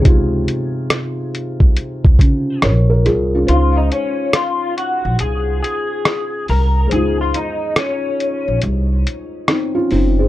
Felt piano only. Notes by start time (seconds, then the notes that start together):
0.00 C3 G#3
0.05 D#4 F4
2.63 A#4 C#5
2.90 A#4
3.06 F4 G#4
3.35 C#4 F4
3.44 G#3 C5
3.50 D#4 F5
6.87 G#3 C5
6.93 D#4 F4
9.48 C4 D#4
9.75 C#4 F4
9.91 C4 D#4
10.19 G#4 C5